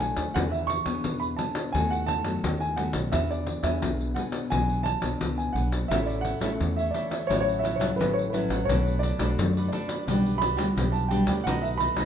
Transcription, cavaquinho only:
5.91 E4 A4 C#5 E5
6.25 E4 A4 C#5 E5
6.41 E4 A4 C#5 E5
6.79 A4 C#5 E5
6.94 E4 A4 C#5 E5
7.10 A4 C#5 E5
7.29 E4 A4 C#5 F#5
7.63 E4 A4 C#5 F#5
7.80 E4 A4 C#5 F#5
7.99 E4 A4 C#5 F#5
8.33 E4 A4 C#5 F#5
8.50 A4 C#5 F#5
8.70 D4 A4 B4
9.04 D4 A4 B4 D5
9.19 D4 A4 B4 D5
9.57 A4 B4 D5
9.72 D4 A4 B4 D5
9.88 A4 B4 D5
10.07 F#4 G4 B4 D5
10.41 F#4 G4 B4 D5
10.57 F#4 G4 B4 D5
10.76 F#4 G4 B4 D5
11.10 F#4 G4 B4 D5
11.27 G4 B4 D5
11.47 D#4 A4 B4 D#5
11.81 D#4 A4 B4 D#5
11.97 D#4 A4 B4 D#5

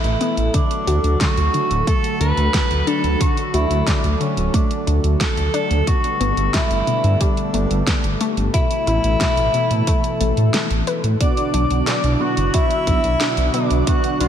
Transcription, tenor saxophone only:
Already playing: E4
0.54 D4
1.21 F#4
1.87 A4
2.21 B4
2.87 A4
3.21 F#4
3.54 E4
3.87 D4
4.21 C#4
4.54 D4
5.21 A4
5.87 F#4
6.54 E4
7.21 D4
8.54 E4
11.21 D4
11.87 D4
12.21 F#4
12.54 E4
13.54 D4
13.87 F#4
14.21 F#4

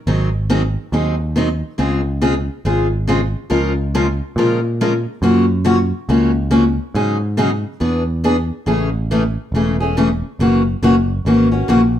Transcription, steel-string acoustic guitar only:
0.07 D#3 F#3 C4 D#4 G#4
0.50 D#3 F#3 C4 D#4 G#4
0.93 D#3 F#3 C4 D#4 G#4
1.36 D#3 F#3 C4 D#4 G#4
1.78 C#3 G#3 C4 F4 G#4
2.21 C#3 G#3 C4 F4 G#4
2.65 C#3 G#3 C4 F4 G#4
3.07 C#3 G#3 C4 F4 G#4
3.50 C#3 F3 G#3 C#4 F4 A#4
3.95 C#3 F3 G#3 C#4 F4 A#4
4.38 C#3 F3 G#3 C#4 F4 A#4
4.81 C#3 F3 G#3 C#4 F4 A#4
5.23 C#3 F3 A#3 C#4 F#4
5.64 C#3 F3 A#3 C#4 F#4
6.09 C#3 F3 A#3 C#4 F#4
6.51 C#3 F3 A#3 C#4 F#4
6.95 C#3 F#3 C#4 D#4 G#4
7.37 C#3 F#3 C#4 D#4 G#4
7.80 E3 B3 D4 G#4
8.24 E3 B3 D4 G#4
8.66 C#3 E3 A3 C#4 G#4
9.11 C#3 E3 A3 C#4 G#4
9.54 C#3 E3 A3 C#4 G#4
9.80 A3 C#4 G#4
9.97 C#3 E3 A3 C#4 G#4
10.40 C#3 E3 A#3 C#4 F#4
10.83 C#3 E3 A#3 C#4 F#4
11.26 C#3 E3 A#3 C#4 F#4
11.52 A#3 C#4 F#4
11.68 C#3 E3 A#3 C#4 F#4

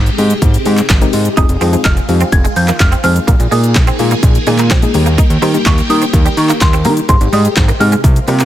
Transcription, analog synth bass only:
Already playing: G#1
0.18 G#2
0.42 G#1
0.66 G#2
0.90 G#1
1.13 G#2
1.37 F1
1.49 F1
1.61 F2
1.85 F1
2.09 F2
2.32 F1
2.56 F2
2.80 F1
3.04 F2
3.28 A#1
3.40 A#1
3.52 A#2
3.76 A#1
3.99 A#2
4.23 A#1
4.47 A#2
4.71 A#1
4.94 D#2
5.30 D#2
5.42 D#3
5.66 D#2
5.90 D#3
6.13 D#2
6.37 D#3
6.61 D#2
6.85 D#3
7.09 G#1
7.21 G#1
7.33 G#2
7.57 G#1
7.80 G#2
8.04 C2
8.28 C3

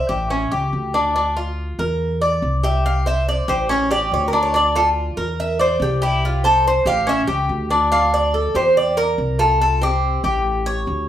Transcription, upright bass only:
0.09 A1
0.52 C#2
0.73 D2
1.79 E2
2.42 C2
3.48 A1
4.12 D2
5.17 E2
5.80 C2
6.85 A1
7.28 C#2
7.49 D2
8.54 E2
9.18 C2
10.24 A1
10.87 D2

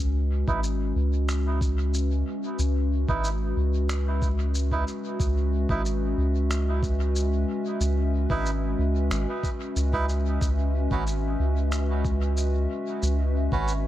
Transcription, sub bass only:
0.00 C#2
0.48 G#1
0.96 C#2
2.59 C#2
3.08 G#1
3.57 C#2
5.20 C#2
5.69 G#1
6.18 C#2
7.81 C#2
8.30 G#1
8.79 C#2
9.11 G#1
9.76 C#2
10.41 C#2
10.91 G#1
11.40 C#2
13.03 C#2
13.52 G#1

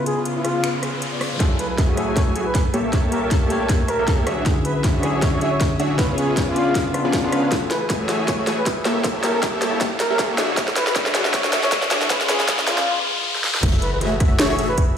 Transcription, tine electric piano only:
Already playing: C#3 B3 F4
1.38 F#3 E4 G#4 A4
1.95 F#3 E4 G#4
1.99 A4
2.92 G4 C#5
3.48 A3 G4 A#4
3.52 C#5
4.44 D3 C#4 E4 F#4
4.48 G#4
5.01 D3 C#4 E4 F#4
5.05 G#4
5.97 C#3 B3
6.01 F4
6.55 C#3 B3 D4 F4
6.93 C#3 B3 D4 F4
7.23 C#3 B3 D4 F4

